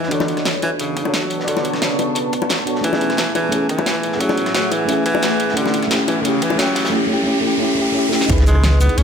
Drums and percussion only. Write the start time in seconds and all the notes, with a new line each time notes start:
0.03 snare
0.11 kick, closed hi-hat
0.20 snare, high bongo
0.28 closed hi-hat
0.37 cross-stick, snare, closed hi-hat
0.45 snare, closed hi-hat
0.62 closed hi-hat, high bongo
0.79 closed hi-hat
0.97 kick, closed hi-hat
1.05 cross-stick, high bongo
1.14 snare, closed hi-hat
1.22 kick
1.30 closed hi-hat
1.40 snare
1.48 kick, closed hi-hat
1.56 snare, high bongo
1.65 closed hi-hat
1.73 cross-stick, snare, closed hi-hat
1.82 snare, closed hi-hat
1.99 closed hi-hat, high bongo
2.15 closed hi-hat
2.33 kick, closed hi-hat
2.42 high bongo
2.50 snare, closed hi-hat
2.59 kick, cross-stick, snare
2.67 closed hi-hat
2.75 snare
2.84 kick, closed hi-hat
2.93 snare, high bongo
3.01 closed hi-hat
3.10 cross-stick, snare, closed hi-hat
3.17 snare, closed hi-hat
3.35 closed hi-hat, high bongo
3.52 closed hi-hat
3.69 kick, closed hi-hat
3.78 cross-stick, high bongo
3.86 snare, closed hi-hat
3.95 kick
4.03 closed hi-hat
4.12 snare
4.20 kick, closed hi-hat
4.29 snare, high bongo
4.37 closed hi-hat
4.45 cross-stick, snare, closed hi-hat
4.54 snare, closed hi-hat
4.71 closed hi-hat, high bongo
4.89 closed hi-hat
5.06 kick, closed hi-hat
5.15 high bongo
5.22 snare, closed hi-hat
5.31 cross-stick, snare
5.40 closed hi-hat
5.49 snare
5.57 kick, closed hi-hat
5.66 snare, high bongo
5.74 closed hi-hat
5.82 cross-stick, snare, closed hi-hat
5.91 snare, closed hi-hat
6.08 closed hi-hat, high bongo
6.25 closed hi-hat
6.42 kick, closed hi-hat
6.50 cross-stick, high bongo
6.59 snare, closed hi-hat
6.68 kick
6.75 snare, closed hi-hat
6.85 snare, closed hi-hat
8.12 snare
8.21 snare
8.29 kick, closed hi-hat
8.38 snare, closed hi-hat
8.46 closed hi-hat, shaker
8.55 cross-stick
8.64 snare, closed hi-hat
8.81 closed hi-hat, shaker
8.89 closed hi-hat
8.98 closed hi-hat